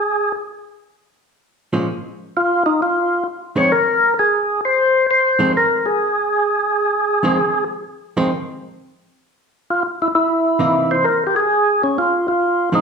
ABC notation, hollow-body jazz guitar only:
X:1
M:4/4
L:1/8
Q:"Swing" 1/4=131
K:Cm
V:1 name="Hollow-body jazz guitar" clef=bass
z6 z [B,,F,A,_D] | z6 z [F,,E,A,C] | z6 z [F,,E,A,C] | z6 z [F,,E,A,C] |
z3 [F,,E,A,C] z4 | z6 [C,=E,B,^D]2 | z6 z [F,,E,A,C] |]